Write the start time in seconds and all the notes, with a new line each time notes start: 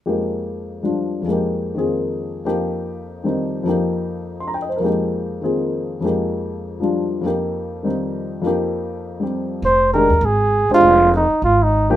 0.06 F2 F3 G#3 A#3 D#4 G4
0.83 F3 G3 D4 F4
1.22 F2 F3
1.26 G#3 A#3
1.31 D#4 G4
1.75 D#3 A#3 C4 F4 G#4
2.45 F2 F3 A#3 D#4 G4
3.24 D#3 G3 C4 D#4
3.63 F2 F3 A#3 D#4
3.69 G4
4.40 C6
4.48 A#5
4.54 G5
4.62 D#5
4.69 C5
4.76 F2 A#4
4.81 F3 G#3 A#3 D#4
4.86 G4
5.42 D#3 A#3 C4 F4 G#4
6.00 F2 F3 G#3 A#3
6.05 D#4 G4
6.80 F3 G3 D4 F4
7.21 F2 F3 A#3
7.26 D#4 G4
7.83 D#3 G3 C4 D#4
8.42 F2 F3 A#3
8.46 D#4 G4
9.20 G3 C4 G4
9.62 F1 C5
9.93 D#3 G#3 D4 G4 A#4
10.09 D#2
10.21 G#1
10.25 G#4
10.69 G1 G#3 D4 G4 C5
10.74 F4
10.81 F1
11.16 D#4
11.30 muted upright bass stroke
11.42 G#1 F4
11.63 D#4
11.90 F3 A#3 D#4 G4